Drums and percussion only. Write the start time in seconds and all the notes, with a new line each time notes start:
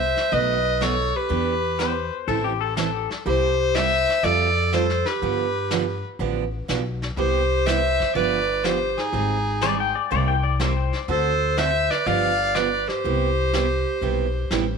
0.17 snare
0.32 brush sweep
0.81 snare, hi-hat pedal
1.30 brush sweep
1.80 snare, hi-hat pedal
2.28 brush sweep
2.77 snare, hi-hat pedal
3.11 snare
3.26 brush sweep
3.75 snare, hi-hat pedal
4.09 snare
4.24 brush sweep
4.72 snare, hi-hat pedal
4.89 snare
5.05 snare
5.22 brush sweep
5.71 snare, hi-hat pedal
6.20 brush sweep
6.69 snare, hi-hat pedal
7.02 snare
7.18 brush sweep
7.67 snare, hi-hat pedal
8.00 kick, snare
8.16 brush sweep
8.64 snare, hi-hat pedal
8.98 snare
9.13 brush sweep
9.61 snare, hi-hat pedal
10.11 brush sweep
10.60 snare, hi-hat pedal
10.93 snare
11.08 brush sweep
11.58 snare, hi-hat pedal
11.91 snare
12.06 brush sweep
12.55 snare, hi-hat pedal
12.89 snare
13.04 brush sweep
13.53 snare, hi-hat pedal
14.02 brush sweep
14.51 snare, hi-hat pedal